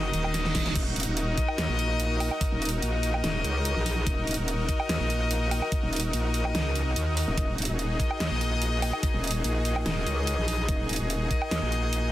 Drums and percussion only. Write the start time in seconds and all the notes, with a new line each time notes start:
0.14 closed hi-hat
0.24 low woodblock
0.34 snare, closed hi-hat
0.45 snare
0.55 kick, snare, open hi-hat
0.66 snare, closed hi-hat
0.75 kick, closed hi-hat, crash
0.96 closed hi-hat
1.00 closed hi-hat
1.03 closed hi-hat
1.17 closed hi-hat
1.38 kick, closed hi-hat
1.48 low woodblock
1.58 snare, closed hi-hat
1.79 closed hi-hat
2.00 closed hi-hat
2.20 open hi-hat, low woodblock
2.31 low woodblock
2.41 kick, closed hi-hat
2.62 closed hi-hat
2.65 closed hi-hat
2.69 closed hi-hat
2.82 closed hi-hat
3.03 closed hi-hat
3.14 low woodblock
3.24 snare, closed hi-hat
3.44 closed hi-hat
3.65 closed hi-hat
3.86 open hi-hat
4.07 kick, closed hi-hat
4.27 closed hi-hat
4.31 closed hi-hat
4.34 closed hi-hat
4.48 closed hi-hat
4.69 kick, closed hi-hat
4.80 low woodblock
4.89 snare, closed hi-hat
5.10 closed hi-hat
5.31 closed hi-hat
5.51 open hi-hat, low woodblock
5.62 low woodblock
5.72 kick, closed hi-hat
5.93 closed hi-hat
5.96 closed hi-hat
6.00 closed hi-hat
6.13 closed hi-hat
6.34 closed hi-hat
6.45 low woodblock
6.55 snare, closed hi-hat
6.75 closed hi-hat
6.96 closed hi-hat
7.17 open hi-hat
7.38 kick, closed hi-hat
7.58 closed hi-hat
7.62 closed hi-hat
7.65 closed hi-hat
7.79 closed hi-hat
8.00 kick, closed hi-hat
8.11 low woodblock
8.20 snare, closed hi-hat
8.41 closed hi-hat
8.62 closed hi-hat
8.82 open hi-hat, low woodblock
8.93 low woodblock
9.03 kick, closed hi-hat
9.24 closed hi-hat
9.27 closed hi-hat
9.31 closed hi-hat
9.44 closed hi-hat
9.65 closed hi-hat
9.76 low woodblock
9.86 snare, closed hi-hat
10.07 closed hi-hat
10.27 closed hi-hat
10.48 open hi-hat
10.69 kick, closed hi-hat
10.89 closed hi-hat
10.93 closed hi-hat
10.96 closed hi-hat
11.10 closed hi-hat
11.31 kick, closed hi-hat
11.42 low woodblock
11.51 snare, closed hi-hat
11.72 closed hi-hat
11.93 closed hi-hat